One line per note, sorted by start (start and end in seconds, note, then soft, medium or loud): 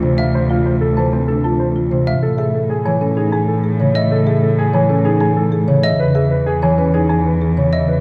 0.00 2.12 D2 medium
0.00 1.91 C3 medium
0.00 0.95 E3 medium
0.00 0.23 C5 medium
0.18 0.39 E5 medium
0.18 0.39 F5 medium
0.35 0.55 C5 medium
0.50 0.70 F4 medium
0.50 0.70 F5 medium
0.66 0.86 C5 medium
0.81 1.02 A4 medium
0.97 2.24 E3 medium
0.97 1.17 C5 medium
0.97 1.17 A5 medium
1.13 1.33 C4 medium
1.13 1.33 C5 medium
1.28 1.49 D4 medium
1.28 1.49 A4 medium
1.44 1.65 F4 medium
1.44 1.64 A5 medium
1.59 1.80 C5 medium
1.76 1.96 F4 medium
1.91 2.24 C3 soft
1.91 2.12 C5 medium
2.07 2.27 E5 medium
2.07 2.27 F5 medium
2.23 5.89 A2 medium
2.23 2.43 A4 medium
2.38 2.59 G#4 medium
2.38 2.59 E5 medium
2.54 2.75 A4 medium
2.70 2.90 G#4 medium
2.85 4.73 E3 medium
2.85 3.06 C#5 medium
2.85 3.06 G#5 medium
3.01 3.22 C#4 medium
3.01 3.22 A4 medium
3.17 3.37 D#4 medium
3.17 3.37 G#4 medium
3.32 3.53 G#4 medium
3.32 3.53 G#5 medium
3.48 3.69 A4 medium
3.64 3.84 G#4 medium
3.80 5.67 C#3 medium
3.80 4.00 C#5 medium
3.95 4.16 D#5 medium
3.95 4.16 E5 medium
4.12 4.32 A4 medium
4.27 4.47 G#4 medium
4.27 4.47 E5 medium
4.43 4.63 A4 medium
4.59 4.79 G#4 medium
4.74 6.01 E3 medium
4.74 4.94 C#5 medium
4.74 4.94 G#5 medium
4.89 5.10 C#4 medium
4.89 5.10 A4 medium
5.05 5.26 D#4 medium
5.05 5.26 G#4 medium
5.21 5.41 G#4 medium
5.21 5.41 G#5 medium
5.37 5.57 A4 medium
5.52 5.73 G#4 medium
5.68 6.01 C#3 medium
5.68 5.88 C#5 medium
5.83 6.04 D#5 medium
5.83 6.04 E5 medium
5.99 8.01 E2 medium
5.99 6.20 B4 medium
6.15 6.36 G#4 medium
6.15 6.36 E5 medium
6.31 6.51 B4 medium
6.46 6.67 G#4 medium
6.62 8.01 E3 medium
6.62 6.83 C#5 medium
6.62 6.83 G#5 medium
6.78 6.99 C#4 medium
6.78 6.99 B4 medium
6.94 7.14 D#4 medium
6.94 7.14 G#4 medium
7.09 7.30 G#4 medium
7.09 7.30 G#5 medium
7.25 7.46 B4 medium
7.42 7.62 G#4 medium
7.57 8.01 C#3 medium
7.57 7.77 C#5 medium
7.73 7.93 D#5 medium
7.73 7.93 E5 soft
7.88 8.01 B4 medium